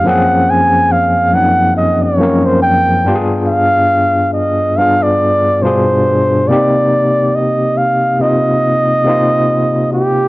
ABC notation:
X:1
M:4/4
L:1/16
Q:"Swing 16ths" 1/4=70
K:Cm
V:1 name="Flugelhorn"
_g2 a2 f2 g2 e _d2 c =g3 z | f4 e2 f d3 c4 d2- | d2 e2 f2 e8 G2 |]
V:2 name="Tine electric piano"
[_G,,F,B,C_DA]6 [G,,F,B,CDE]4 [G,,F,B,CDB]4 [=G,,=B,=DFGA]2- | [G,,=B,DFGA]6 [G,,B,DFA]4 [G,,=B,,DFA]4 [C,_B,CEG]2- | [C,B,CEG]6 [C,B,CEF]4 [C,B,CEF]6 |]